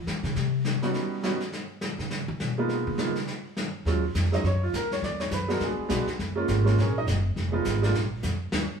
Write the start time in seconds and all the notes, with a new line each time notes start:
0.07 D#3, snare
0.23 C#3, snare
0.35 C3, brush sweep, snare
0.65 snare
0.82 G3 B3 C#4 D#4 F#4, snare
0.94 brush sweep, snare
1.23 G3 B3 C#4 D#4 F#4, snare
1.40 snare
1.52 brush sweep, snare
1.81 snare
1.98 C#3, snare
2.10 brush sweep, snare
2.28 D#3
2.40 B2, snare
2.57 G#3 A#3 B3 D#4 F4
2.69 brush sweep, snare
2.87 C#3
2.98 G#3 A#3 B3 D#4 F4, snare
3.15 snare
3.27 brush sweep, snare
3.57 snare
3.85 D#2 F#3 G#3 C#4 F4, brush sweep, kick, snare
4.15 F2, kick, snare, hi-hat pedal
4.25 snare
4.32 F#3 G#3 C#4 D#4, snare
4.34 D#5, snare
4.44 F#2 C#5, brush sweep, kick, snare
4.63 F4
4.73 D#2 A#4, kick, snare, hi-hat pedal
4.91 C#5, snare
5.02 E2 D5, brush sweep, kick, snare
5.20 C#5, snare
5.31 F#2 B4, kick, snare, hi-hat pedal
5.48 G#3 B3 D4 F#4 A#4, snare
5.60 D2 G#4, brush sweep, kick, snare
5.78 muted upright bass stroke
5.89 B1 G#3 B3 D4 F#4, kick, snare, hi-hat pedal
6.07 muted upright bass stroke, snare
6.19 F#1, brush sweep, kick, snare
6.35 G#3 A#3 C#4 F4
6.48 G#1, kick, snare, hi-hat pedal
6.64 G#3 A#3 C#4 F4, snare
6.78 A#1 C#4 G#4 A#4 C#5, brush sweep, kick, snare
6.98 D#4 D#5
7.07 F#1, kick, snare, hi-hat pedal
7.36 F1, brush sweep, kick, snare
7.52 G#3 B3 D#4 F4
7.65 G#1, kick, snare, hi-hat pedal
7.82 G#3 A#3 D4 F4, snare
7.94 A#1, brush sweep, kick, snare
8.23 F2, kick, snare, hi-hat pedal
8.52 D#2, snare